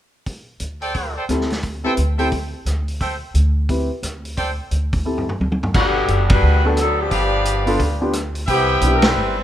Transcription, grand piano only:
0, 0, Header, 1, 2, 480
1, 0, Start_track
1, 0, Key_signature, 1, "major"
1, 0, Tempo, 342075
1, 372, Time_signature, 4, 2, 24, 8
1, 13238, End_track
2, 0, Start_track
2, 0, Title_t, "Grand piano"
2, 0, Program_c, 0, 0
2, 1804, Note_on_c, 0, 60, 50
2, 1821, Note_on_c, 0, 64, 41
2, 1826, Note_on_c, 0, 67, 41
2, 1834, Note_on_c, 0, 69, 52
2, 2080, Note_off_c, 0, 60, 0
2, 2088, Note_off_c, 0, 64, 0
2, 2091, Note_off_c, 0, 67, 0
2, 2095, Note_off_c, 0, 69, 0
2, 2579, Note_on_c, 0, 60, 46
2, 2591, Note_on_c, 0, 64, 39
2, 2592, Note_on_c, 0, 67, 44
2, 2601, Note_on_c, 0, 71, 50
2, 2750, Note_off_c, 0, 60, 0
2, 2756, Note_off_c, 0, 64, 0
2, 2756, Note_off_c, 0, 67, 0
2, 2761, Note_off_c, 0, 71, 0
2, 3065, Note_on_c, 0, 60, 47
2, 3070, Note_on_c, 0, 64, 43
2, 3074, Note_on_c, 0, 67, 44
2, 3082, Note_on_c, 0, 69, 55
2, 3233, Note_off_c, 0, 60, 0
2, 3236, Note_off_c, 0, 64, 0
2, 3238, Note_off_c, 0, 67, 0
2, 3242, Note_off_c, 0, 69, 0
2, 5176, Note_on_c, 0, 60, 40
2, 5185, Note_on_c, 0, 67, 37
2, 5186, Note_on_c, 0, 64, 39
2, 5200, Note_on_c, 0, 71, 46
2, 5449, Note_off_c, 0, 60, 0
2, 5453, Note_off_c, 0, 67, 0
2, 5454, Note_off_c, 0, 64, 0
2, 5461, Note_off_c, 0, 71, 0
2, 7088, Note_on_c, 0, 60, 43
2, 7093, Note_on_c, 0, 64, 42
2, 7100, Note_on_c, 0, 67, 39
2, 7104, Note_on_c, 0, 69, 53
2, 7366, Note_off_c, 0, 60, 0
2, 7368, Note_off_c, 0, 64, 0
2, 7372, Note_off_c, 0, 67, 0
2, 7373, Note_off_c, 0, 69, 0
2, 9331, Note_on_c, 0, 59, 62
2, 9332, Note_on_c, 0, 62, 53
2, 9341, Note_on_c, 0, 66, 55
2, 9354, Note_on_c, 0, 69, 72
2, 9488, Note_off_c, 0, 59, 0
2, 9489, Note_off_c, 0, 62, 0
2, 9493, Note_off_c, 0, 66, 0
2, 9500, Note_off_c, 0, 69, 0
2, 10750, Note_on_c, 0, 59, 62
2, 10763, Note_on_c, 0, 62, 54
2, 10766, Note_on_c, 0, 65, 63
2, 10777, Note_on_c, 0, 69, 70
2, 10916, Note_off_c, 0, 59, 0
2, 10923, Note_off_c, 0, 62, 0
2, 10924, Note_off_c, 0, 65, 0
2, 10930, Note_off_c, 0, 69, 0
2, 11239, Note_on_c, 0, 59, 54
2, 11246, Note_on_c, 0, 62, 52
2, 11252, Note_on_c, 0, 65, 49
2, 11253, Note_on_c, 0, 67, 62
2, 11400, Note_off_c, 0, 59, 0
2, 11404, Note_off_c, 0, 62, 0
2, 11407, Note_off_c, 0, 65, 0
2, 11407, Note_off_c, 0, 67, 0
2, 12373, Note_on_c, 0, 59, 51
2, 12379, Note_on_c, 0, 62, 48
2, 12387, Note_on_c, 0, 64, 47
2, 12392, Note_on_c, 0, 67, 54
2, 12644, Note_off_c, 0, 59, 0
2, 12646, Note_off_c, 0, 62, 0
2, 12651, Note_off_c, 0, 64, 0
2, 12653, Note_off_c, 0, 67, 0
2, 13238, End_track
0, 0, End_of_file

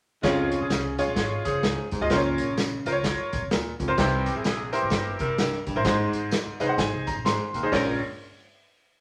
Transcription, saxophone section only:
0, 0, Header, 1, 2, 480
1, 0, Start_track
1, 0, Key_signature, -5, "minor"
1, 0, Tempo, 467654
1, 241, Time_signature, 4, 2, 24, 8
1, 9244, End_track
2, 0, Start_track
2, 0, Title_t, "Saxophone section"
2, 0, Program_c, 0, 65
2, 234, Note_on_c, 0, 49, 98
2, 234, Note_on_c, 0, 65, 118
2, 235, Note_on_c, 0, 56, 105
2, 601, Note_off_c, 0, 49, 0
2, 601, Note_off_c, 0, 65, 0
2, 602, Note_off_c, 0, 56, 0
2, 623, Note_on_c, 0, 61, 72
2, 625, Note_on_c, 0, 68, 79
2, 628, Note_on_c, 0, 53, 68
2, 699, Note_off_c, 0, 61, 0
2, 700, Note_off_c, 0, 68, 0
2, 702, Note_off_c, 0, 53, 0
2, 713, Note_on_c, 0, 68, 73
2, 715, Note_on_c, 0, 53, 74
2, 717, Note_on_c, 0, 61, 73
2, 952, Note_off_c, 0, 68, 0
2, 953, Note_off_c, 0, 53, 0
2, 954, Note_off_c, 0, 61, 0
2, 1001, Note_on_c, 0, 65, 84
2, 1007, Note_on_c, 0, 49, 77
2, 1008, Note_on_c, 0, 56, 75
2, 1459, Note_off_c, 0, 65, 0
2, 1462, Note_off_c, 0, 49, 0
2, 1462, Note_off_c, 0, 56, 0
2, 1487, Note_on_c, 0, 61, 74
2, 1490, Note_on_c, 0, 68, 85
2, 1493, Note_on_c, 0, 53, 79
2, 1942, Note_off_c, 0, 61, 0
2, 1944, Note_off_c, 0, 68, 0
2, 1945, Note_off_c, 0, 53, 0
2, 4083, Note_on_c, 0, 52, 109
2, 4083, Note_on_c, 0, 60, 112
2, 4084, Note_on_c, 0, 67, 120
2, 4447, Note_off_c, 0, 52, 0
2, 4447, Note_off_c, 0, 60, 0
2, 4447, Note_off_c, 0, 67, 0
2, 4474, Note_on_c, 0, 64, 73
2, 4475, Note_on_c, 0, 68, 80
2, 4546, Note_off_c, 0, 64, 0
2, 4547, Note_off_c, 0, 68, 0
2, 4559, Note_on_c, 0, 64, 72
2, 4559, Note_on_c, 0, 68, 87
2, 4796, Note_off_c, 0, 64, 0
2, 4796, Note_off_c, 0, 68, 0
2, 4865, Note_on_c, 0, 60, 80
2, 4865, Note_on_c, 0, 67, 83
2, 4867, Note_on_c, 0, 52, 76
2, 5313, Note_off_c, 0, 60, 0
2, 5313, Note_off_c, 0, 67, 0
2, 5314, Note_off_c, 0, 52, 0
2, 5337, Note_on_c, 0, 55, 80
2, 5337, Note_on_c, 0, 70, 84
2, 5340, Note_on_c, 0, 64, 79
2, 5789, Note_off_c, 0, 55, 0
2, 5789, Note_off_c, 0, 70, 0
2, 5790, Note_off_c, 0, 64, 0
2, 7922, Note_on_c, 0, 61, 87
2, 7923, Note_on_c, 0, 53, 94
2, 7925, Note_on_c, 0, 70, 97
2, 8128, Note_off_c, 0, 53, 0
2, 8128, Note_off_c, 0, 61, 0
2, 8130, Note_off_c, 0, 70, 0
2, 9244, End_track
0, 0, End_of_file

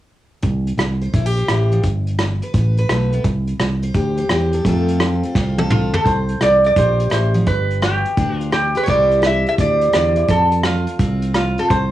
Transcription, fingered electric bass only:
0, 0, Header, 1, 2, 480
1, 0, Start_track
1, 0, Key_signature, 0, "major"
1, 0, Tempo, 352319
1, 580, Time_signature, 4, 2, 24, 8
1, 16230, End_track
2, 0, Start_track
2, 0, Title_t, "Fingered electric bass"
2, 0, Program_c, 0, 33
2, 589, Note_on_c, 0, 36, 80
2, 969, Note_off_c, 0, 36, 0
2, 1054, Note_on_c, 0, 36, 73
2, 1465, Note_off_c, 0, 36, 0
2, 1547, Note_on_c, 0, 34, 72
2, 1952, Note_off_c, 0, 34, 0
2, 2027, Note_on_c, 0, 33, 64
2, 2432, Note_off_c, 0, 33, 0
2, 2502, Note_on_c, 0, 31, 82
2, 3268, Note_off_c, 0, 31, 0
2, 3458, Note_on_c, 0, 33, 72
2, 3867, Note_off_c, 0, 33, 0
2, 3934, Note_on_c, 0, 35, 64
2, 4345, Note_off_c, 0, 35, 0
2, 4417, Note_on_c, 0, 36, 82
2, 4801, Note_off_c, 0, 36, 0
2, 4903, Note_on_c, 0, 36, 74
2, 5309, Note_off_c, 0, 36, 0
2, 5374, Note_on_c, 0, 38, 79
2, 5784, Note_off_c, 0, 38, 0
2, 5858, Note_on_c, 0, 40, 62
2, 6267, Note_off_c, 0, 40, 0
2, 6337, Note_on_c, 0, 41, 82
2, 7104, Note_off_c, 0, 41, 0
2, 7289, Note_on_c, 0, 36, 74
2, 8059, Note_off_c, 0, 36, 0
2, 8249, Note_on_c, 0, 36, 81
2, 8636, Note_off_c, 0, 36, 0
2, 8734, Note_on_c, 0, 36, 66
2, 9143, Note_off_c, 0, 36, 0
2, 9215, Note_on_c, 0, 34, 85
2, 9624, Note_off_c, 0, 34, 0
2, 9699, Note_on_c, 0, 33, 72
2, 10106, Note_off_c, 0, 33, 0
2, 10175, Note_on_c, 0, 31, 77
2, 10942, Note_off_c, 0, 31, 0
2, 11132, Note_on_c, 0, 38, 72
2, 11900, Note_off_c, 0, 38, 0
2, 12101, Note_on_c, 0, 36, 87
2, 12866, Note_off_c, 0, 36, 0
2, 13060, Note_on_c, 0, 38, 70
2, 13466, Note_off_c, 0, 38, 0
2, 13540, Note_on_c, 0, 40, 67
2, 13947, Note_off_c, 0, 40, 0
2, 14018, Note_on_c, 0, 41, 70
2, 14785, Note_off_c, 0, 41, 0
2, 14974, Note_on_c, 0, 36, 83
2, 15743, Note_off_c, 0, 36, 0
2, 15941, Note_on_c, 0, 36, 76
2, 16230, Note_off_c, 0, 36, 0
2, 16230, End_track
0, 0, End_of_file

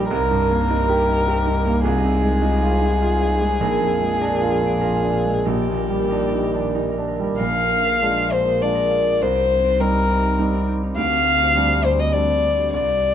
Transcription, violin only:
0, 0, Header, 1, 2, 480
1, 0, Start_track
1, 0, Key_signature, -3, "minor"
1, 0, Tempo, 584795
1, 85, Time_signature, 3, 2, 24, 8
1, 2966, Tempo, 604839
1, 3926, Tempo, 636267
1, 6326, Tempo, 592300
1, 10491, End_track
2, 0, Start_track
2, 0, Title_t, "Violin"
2, 0, Program_c, 0, 40
2, 87, Note_on_c, 0, 70, 74
2, 1487, Note_off_c, 0, 70, 0
2, 1518, Note_on_c, 0, 68, 75
2, 4407, Note_on_c, 0, 67, 58
2, 4418, Note_off_c, 0, 68, 0
2, 5709, Note_off_c, 0, 67, 0
2, 5868, Note_on_c, 0, 77, 77
2, 6585, Note_on_c, 0, 72, 68
2, 6597, Note_off_c, 0, 77, 0
2, 6824, Note_on_c, 0, 74, 64
2, 6836, Note_off_c, 0, 72, 0
2, 7309, Note_on_c, 0, 72, 72
2, 7321, Note_off_c, 0, 74, 0
2, 7782, Note_on_c, 0, 70, 75
2, 7794, Note_off_c, 0, 72, 0
2, 8489, Note_off_c, 0, 70, 0
2, 8732, Note_on_c, 0, 77, 92
2, 9439, Note_on_c, 0, 72, 73
2, 9451, Note_off_c, 0, 77, 0
2, 9556, Note_on_c, 0, 75, 70
2, 9568, Note_off_c, 0, 72, 0
2, 9665, Note_on_c, 0, 74, 75
2, 9677, Note_off_c, 0, 75, 0
2, 10153, Note_off_c, 0, 74, 0
2, 10158, Note_on_c, 0, 74, 67
2, 10491, Note_off_c, 0, 74, 0
2, 10491, End_track
0, 0, End_of_file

